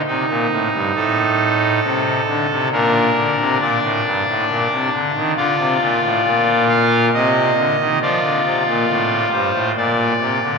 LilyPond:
<<
  \new Staff \with { instrumentName = "Pipe organ" } { \time 3/4 \key g \minor \tempo 4 = 68 << { r4 a'2 | bes'4 d''4. r8 | \key bes \major d''4. f''8 ees''4 | d''4. c''8 d''4 | } \\ { ees'2 r4 | d'2. | f'2 r4 | f'2 r4 | } >> }
  \new Staff \with { instrumentName = "Pipe organ" } { \clef bass \time 3/4 \key g \minor c16 bes,16 a,16 g,16 a,4 c8 d16 c16 | bes,8 d16 c16 bes,16 a,16 g,16 a,16 bes,16 c16 d16 ees16 | \key bes \major d16 c16 bes,16 a,16 bes,4 c8 d16 ees16 | f16 d16 c16 bes,16 a,8 g,16 a,16 bes,8 c16 d16 | }
>>